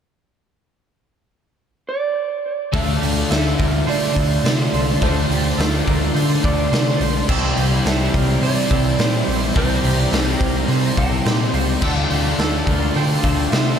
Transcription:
1.89 clean electric guitar D5
2.72 picked electric bass D2, distorted electric guitar D3 A3 D4, analog synth pad F4 D5 A5 C6, overdriven electric guitar F4, clean electric guitar A4 F5, kick, open hi-hat
3.01 picked electric bass D2, clean electric guitar G4, open hi-hat
3.29 picked electric bass D2, distorted electric guitar D3 A3 D4, clean electric guitar A4 E5, snare, open hi-hat
3.58 picked electric bass D2, clean electric guitar A#4, kick, open hi-hat
3.87 picked electric bass D3, clean electric guitar C5 D5, open hi-hat
4.15 picked electric bass D2, distorted electric guitar A3 D4, clean electric guitar A4, kick, open hi-hat
4.44 picked electric bass C3, distorted electric guitar D3 A3 D4, clean electric guitar C5, snare, open hi-hat
4.72 picked electric bass C2, distorted electric guitar A3 D4, clean electric guitar C5, open hi-hat
5.01 picked electric bass D2, distorted electric guitar D3 A3 D4, clean electric guitar A4 C5, kick, open hi-hat
5.29 picked electric bass D2, clean electric guitar G4, open hi-hat
5.58 picked electric bass D2, distorted electric guitar D3 A3 D4, clean electric guitar A4, snare, open hi-hat
5.86 picked electric bass D2, clean electric guitar A#4, kick, open hi-hat
6.15 picked electric bass D3, clean electric guitar C5, open hi-hat
6.43 picked electric bass D2, distorted electric guitar A3 D4, clean electric guitar A4 D5, kick, open hi-hat
6.71 picked electric bass C3, distorted electric guitar D3 A3 D4, clean electric guitar C5, snare, open hi-hat
7.00 picked electric bass B1, distorted electric guitar A3 D4, clean electric guitar C5, open hi-hat
7.28 picked electric bass C2, distorted electric guitar C3 G3 C4, overdriven electric guitar E3 E4, analog synth pad E4 G5, clean electric guitar A4 G5, kick, crash
7.57 picked electric bass C2, clean electric guitar G4, open hi-hat
7.85 picked electric bass C2, distorted electric guitar C3 G3 C4, clean electric guitar A4 E5, snare, open hi-hat
8.14 picked electric bass C2, clean electric guitar A#4, kick, open hi-hat
8.42 picked electric bass C3, clean electric guitar C5 D5, open hi-hat
8.70 picked electric bass C2, distorted electric guitar G3 C4, clean electric guitar A4, kick, open hi-hat
8.98 picked electric bass A#2, distorted electric guitar C3 G3 C4, clean electric guitar C5, snare, open hi-hat
9.26 picked electric bass A#1, distorted electric guitar G3 C4, clean electric guitar C5, open hi-hat
9.54 picked electric bass C2, distorted electric guitar C3 G3 C4, clean electric guitar A4 C5, analog synth pad A#5, kick, open hi-hat
9.83 picked electric bass C2, clean electric guitar G4, open hi-hat
10.12 picked electric bass C2, distorted electric guitar C3 G3 C4, clean electric guitar A4, snare, open hi-hat
10.41 picked electric bass C2, clean electric guitar A#4, kick, open hi-hat
10.68 picked electric bass C3, clean electric guitar C5, open hi-hat
10.97 picked electric bass C2, distorted electric guitar G3 C4, clean electric guitar A4 G5, kick, open hi-hat
11.25 picked electric bass A#2, distorted electric guitar C3 G3 C4, clean electric guitar C5, snare, open hi-hat
11.53 picked electric bass C#2, distorted electric guitar G3 C4, clean electric guitar C5, open hi-hat
11.80 picked electric bass D2, distorted electric guitar D3 A3 D4, analog synth pad F4 A5 C6, overdriven electric guitar F4, clean electric guitar A4 F5, kick, crash
12.11 picked electric bass D2, clean electric guitar G4, open hi-hat
12.39 picked electric bass D2, distorted electric guitar D3 A3 D4, clean electric guitar A4 A5, snare, open hi-hat
12.67 picked electric bass D2, clean electric guitar A#4, kick, open hi-hat
12.94 picked electric bass D3, clean electric guitar C5 G5, open hi-hat
13.23 picked electric bass D2, distorted electric guitar A3 D4, clean electric guitar A4 F5, kick, open hi-hat
13.51 picked electric bass C3, distorted electric guitar D3 A3 D4, clean electric guitar C5 E5, snare, open hi-hat

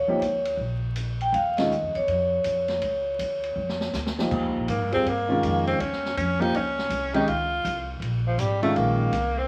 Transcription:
Already playing: upright bass D#2, vibraphone C#5
0.08 grand piano F3 A#3 D#4 G4
0.21 upright bass D2, hi-hat pedal, ride
0.45 ride
0.57 upright bass A#1
0.96 hi-hat pedal, ride
1.21 vibraphone G5, ride
1.32 upright bass D#2, vibraphone F5, ride
1.57 grand piano D#3 G#3 C#4 F4, vibraphone D#5, snare, ride
1.71 hi-hat pedal
1.82 upright bass F2
1.94 upright bass E2, vibraphone C#5, ride
2.07 upright bass F2, ride
2.44 upright bass F2, hi-hat pedal, ride
2.68 snare, ride
2.82 upright bass C#2, ride
3.19 upright bass D2, hi-hat pedal, ride
3.43 ride
3.56 upright bass F2
3.69 snare
3.81 snare
3.93 upright bass D2, snare, hi-hat pedal
4.07 snare
4.18 grand piano F3 A#3 D#4 G4, snare
4.31 upright bass D#2, kick, crash
4.44 upright bass C#2
4.56 upright bass A#1
4.68 upright bass G#2, tenor saxophone A#3, hi-hat pedal, ride
4.81 upright bass G2
4.92 upright bass D#2, grand piano G3 C4 F4 G#4, tenor saxophone C4, ride
5.05 upright bass G2, tenor saxophone A#3, ride
5.28 grand piano D#3 G#3 C#4 F4
5.43 upright bass F2, hi-hat pedal, ride
5.67 tenor saxophone C4, ride
5.79 upright bass D#2, tenor saxophone C#4, ride
5.93 snare
6.05 snare
6.16 upright bass F2, tenor saxophone C#4, hi-hat pedal, ride
6.39 grand piano F3 A#3 D#4 G4, tenor saxophone D#4, ride
6.53 upright bass C#2, tenor saxophone C#4, ride
6.78 snare
6.89 upright bass C2, hi-hat pedal, ride
7.13 grand piano D#3 G#3 C#4 G4, tenor saxophone D#4, ride
7.27 upright bass C#2, tenor saxophone F4, ride
7.65 upright bass C2, hi-hat pedal, ride
8.00 upright bass A#1, ride
8.27 tenor saxophone F3
8.38 upright bass G#1, tenor saxophone G3, hi-hat pedal, ride
8.62 grand piano D#3 G#3 C#4 F4, tenor saxophone A3, ride
8.75 upright bass A#1, tenor saxophone A#3, ride
9.12 upright bass C2, hi-hat pedal, ride
9.38 tenor saxophone C4

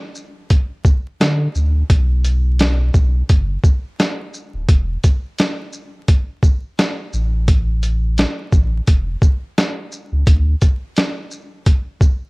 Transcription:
0.15 shaker
0.50 kick, closed hi-hat
0.85 kick, shaker
1.20 sub bass D3, snare, closed hi-hat
1.55 sub bass D2, shaker
1.90 sub bass B1, kick, closed hi-hat
2.24 closed hi-hat, shaker
2.59 snare, closed hi-hat
2.94 sub bass B1, kick, shaker
3.29 sub bass F#1, kick, closed hi-hat
3.64 kick, shaker
4.00 snare, closed hi-hat
4.34 shaker
4.54 sub bass D1
4.69 sub bass E1, kick, closed hi-hat
5.04 kick, closed hi-hat, shaker
5.38 snare, closed hi-hat
5.73 shaker
6.08 kick, closed hi-hat
6.43 kick, shaker
6.79 snare, closed hi-hat
7.13 sub bass A1, shaker
7.48 kick, closed hi-hat
7.83 closed hi-hat, shaker
8.18 snare, closed hi-hat
8.52 sub bass A1, kick, shaker
8.87 sub bass E1, kick, closed hi-hat
9.22 kick, shaker
9.58 snare, closed hi-hat
9.92 shaker
10.12 sub bass C#2
10.27 sub bass D2, kick, closed hi-hat
10.62 kick, closed hi-hat, shaker
10.97 snare, closed hi-hat
11.31 shaker
11.66 kick, closed hi-hat
12.01 kick, shaker

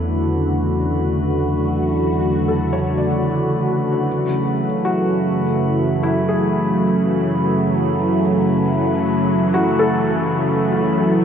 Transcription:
Already playing: synth drone E2 C#3 F#3, analog synth pad D3 E3 A3 B3 E4, glass harmonica A4 B5, felt piano C#5 E5
0.01 analog synth pad F#4
2.48 felt piano A4
2.73 felt piano C#5
2.98 felt piano D5
4.06 synth drone F#2, analog synth pad C#3
4.51 analog synth pad F#3
4.85 felt piano F#4
5.64 analog synth pad E4
6.03 felt piano E4
6.29 felt piano G#4
9.54 felt piano F#4
9.79 felt piano A4

